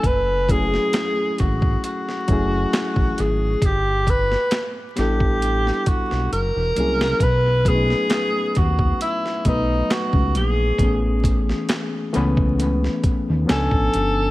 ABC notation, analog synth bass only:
X:1
M:4/4
L:1/16
Q:"Swing 16ths" 1/4=67
K:Bmix
V:1 name="Analog synth bass" clef=bass
F,,,4 z2 G,,,2 z2 F,,,2 z A,,, G,,,2 | =G,,,4 z2 A,,,4 B,,, B,,, F,,, E,,, ^B,,,2 | B,,,4 z2 D,,2 z2 B,,,2 z C,, ^A,,,2 | A,,,4 z2 C,,4 D,, D,, C,, A,,, =G,,,2 |]